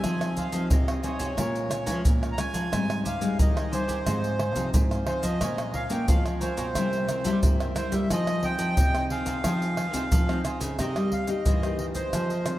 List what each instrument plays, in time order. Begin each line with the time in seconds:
Already playing: nylon-string guitar C4 D#4 G#4, accordion G#5
0.03 nylon-string guitar F3, cavaquinho F4 G#4 C5 D#5, pandeiro, tamborim, maracas, surdo
0.21 pandeiro, tamborim, maracas
0.37 cavaquinho F4 G#4 C5 D#5, accordion F5, pandeiro, maracas, surdo
0.52 nylon-string guitar F3 C4 D#4 G#4, cavaquinho G#4 C5 D#5, pandeiro, maracas
0.70 nylon-string guitar C3, accordion D#5, pandeiro, maracas, surdo
0.88 cavaquinho G#4 C5 D#5, pandeiro, tamborim, maracas
1.03 nylon-string guitar C4 D#4 G#4, cavaquinho F4 G#4 C5 D#5, accordion C#5, pandeiro, maracas
1.19 nylon-string guitar C3, cavaquinho F4 G#4 C5 D#5, pandeiro, maracas, surdo
1.37 nylon-string guitar A#2 G#3 C#4 F4, cavaquinho A#4 C#5 F5 G#5, pandeiro, tamborim, maracas, surdo
1.55 pandeiro, maracas
1.70 cavaquinho A#4 C#5 F5 G#5, pandeiro, tamborim, maracas
1.86 nylon-string guitar F3 G#3 C#4 F4, cavaquinho A#4 C#5 F5 G#5, pandeiro, maracas, surdo
2.05 nylon-string guitar A#2 F3, pandeiro, maracas, surdo
2.22 cavaquinho C#5 F5 G#5, pandeiro, tamborim, maracas
2.32 accordion A#5
2.38 nylon-string guitar G#3 C#4 F4, cavaquinho A#4 C#5 F5 G#5, accordion G#5, pandeiro, tamborim, maracas
2.54 nylon-string guitar F3, cavaquinho C#5 F5 G#5, pandeiro, maracas, surdo
2.72 nylon-string guitar G#2 G3 C4 D#4, cavaquinho C5 D#5 G#5, pandeiro, tamborim, maracas, surdo
2.90 pandeiro, tamborim, maracas
3.04 cavaquinho G4 C5 D#5 G#5, accordion F5, pandeiro, maracas, surdo
3.20 nylon-string guitar G3 G#3 C4 D#4, cavaquinho C5 D#5 G#5, pandeiro, maracas
3.39 nylon-string guitar D#3, accordion D#5, pandeiro, maracas, surdo
3.56 cavaquinho C5 D#5 G#5, pandeiro, tamborim, maracas
3.71 nylon-string guitar G3 C4 D#4, cavaquinho G4 C5 D#5 G#5, accordion C5, pandeiro, maracas
3.88 nylon-string guitar D#3, cavaquinho G4 C5 D#5 G#5, pandeiro, maracas, surdo
4.06 nylon-string guitar G#2 F3 C4 D#4, cavaquinho D#4 G#4 C5 F5, pandeiro, tamborim, maracas, surdo
4.24 pandeiro, maracas
4.39 cavaquinho D#4 G#4 C5 F5, pandeiro, tamborim
4.56 nylon-string guitar C3 F3 C4 D#4, cavaquinho D#4 G#4 C5 F5, pandeiro, maracas, surdo
4.74 nylon-string guitar G#2, pandeiro, maracas, surdo
4.91 cavaquinho G#4 C5 F5, pandeiro, tamborim, maracas
5.06 nylon-string guitar F3 C4 D#4, cavaquinho D#4 G#4 C5 F5, accordion C5, pandeiro, tamborim
5.22 nylon-string guitar F3, cavaquinho G#4 C5 F5, accordion D#5, pandeiro, maracas, surdo
5.40 nylon-string guitar A#2 G#3 C#4 F4, cavaquinho A#4 C#5 F5 G#5, pandeiro, tamborim, maracas, surdo
5.58 pandeiro, tamborim, maracas
5.74 cavaquinho A#4 C#5 F5 G#5, accordion F5, pandeiro, surdo
5.90 nylon-string guitar G#3 A#3 C#4 F4, cavaquinho C#5 F5 G#5, accordion G5, pandeiro, maracas
6.08 nylon-string guitar F3, accordion F5, pandeiro, maracas, surdo
6.25 cavaquinho C#5 F5 G#5, pandeiro, tamborim, maracas
6.41 nylon-string guitar G#3 C#4 F4, cavaquinho A#4 C#5 F5 G#5, accordion C5, pandeiro, maracas
6.57 nylon-string guitar B2, cavaquinho A#4 C#5 F5 G#5, pandeiro, maracas, surdo
6.75 nylon-string guitar C3 G3 A#3 E4, cavaquinho E4 A#4 C5 E5, pandeiro, tamborim, maracas, surdo
6.93 pandeiro, maracas
7.08 cavaquinho E4 A#4 C5 E5, pandeiro, tamborim, maracas
7.25 nylon-string guitar G3 A#3 E4, cavaquinho E4 A#4 C5 E5, pandeiro, maracas, surdo
7.43 nylon-string guitar G2 C3, pandeiro, maracas, surdo
7.60 cavaquinho A#4 C5 E5, pandeiro, tamborim, maracas
7.75 nylon-string guitar G3 A#3 E4, cavaquinho E4 A#4 C5 E5, accordion C5, pandeiro, tamborim, maracas
7.92 nylon-string guitar G3, cavaquinho A#4 C5 E5, accordion E5, pandeiro, maracas, surdo
8.10 nylon-string guitar F3 C4 D#4 G#4, cavaquinho F4 G#4 C5 D#5, accordion D#5, pandeiro, tamborim, maracas, surdo
8.27 pandeiro, tamborim, maracas
8.43 nylon-string guitar C4 D#4 G#4, cavaquinho F4 G#4 C5 D#5, accordion G5, pandeiro, surdo
8.59 nylon-string guitar F3, cavaquinho G#4 C5 D#5, pandeiro, maracas
8.77 nylon-string guitar C3, pandeiro, maracas, surdo
8.95 nylon-string guitar C4 D#4 G#4, cavaquinho G#4 C5 D#5, pandeiro, tamborim, maracas
9.10 cavaquinho F4 G#4 C5 D#5, accordion F5, pandeiro
9.26 nylon-string guitar C3, cavaquinho F4 G#4 C5 D#5, pandeiro, maracas, surdo
9.44 nylon-string guitar F3 C4 D#4 G#4, cavaquinho F4 G#4 C5 D#5, pandeiro, tamborim, maracas, surdo
9.62 pandeiro, maracas
9.77 cavaquinho F4 G#4 C5 D#5, pandeiro, tamborim
9.93 nylon-string guitar C3 C4 D#4 G#4, cavaquinho F4 G#4 C5 D#5, pandeiro, maracas, surdo
10.11 nylon-string guitar C3 F3, pandeiro, maracas, surdo
10.29 nylon-string guitar C4 D#4 G#4, cavaquinho G#4 C5 D#5, pandeiro, tamborim, maracas
10.44 cavaquinho F4 G#4 C5 D#5, pandeiro, tamborim, maracas
10.60 nylon-string guitar C#3, cavaquinho G#4 C5 D#5, pandeiro, maracas, surdo
10.79 nylon-string guitar C3 A#3 D#4 G4, cavaquinho D#4 A#4 C5 D#5, accordion D#5, pandeiro, tamborim, maracas, surdo
10.96 nylon-string guitar G3, cavaquinho A#4 C5 D#5, pandeiro, tamborim, maracas
11.12 accordion F5, muted cavaquinho stroke, pandeiro, surdo
11.27 nylon-string guitar A#3 D#4 G4, accordion D#5, pandeiro, maracas
11.46 nylon-string guitar G2 E3, cavaquinho D#4 A#4 C5 D#5, pandeiro, maracas, surdo
11.63 nylon-string guitar A#3 D#4 G4, cavaquinho A#4 C5 D#5, pandeiro, tamborim, maracas
11.79 accordion D#5, pandeiro
11.95 nylon-string guitar C4 D#4 G#4, cavaquinho A#4 C5 D#5, accordion C5, pandeiro, maracas, surdo
12.13 nylon-string guitar F3, cavaquinho F4 G#4 C5 D#5, pandeiro, tamborim, maracas, surdo
12.30 cavaquinho G#4 C5 D#5, pandeiro, maracas
12.46 nylon-string guitar C4 D#4 G#4, muted cavaquinho stroke, pandeiro, tamborim, maracas